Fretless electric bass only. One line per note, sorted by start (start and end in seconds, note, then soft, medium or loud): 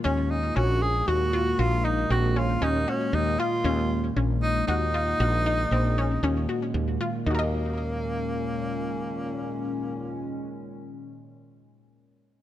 0.05 0.50 D#2 medium
0.56 1.01 A#1 medium
1.08 1.53 D#2 medium
1.59 2.04 A#1 medium
2.10 2.55 A#1 medium
2.62 2.84 D#2 medium
3.13 3.36 D#2 medium
3.64 4.10 D#2 medium
4.16 4.62 A#1 medium
4.68 5.13 D#2 medium
5.20 5.65 A#1 medium
5.71 6.17 A#1 medium
6.23 6.46 D#2 medium
6.74 6.97 D#2 medium
7.26 10.35 D#2 medium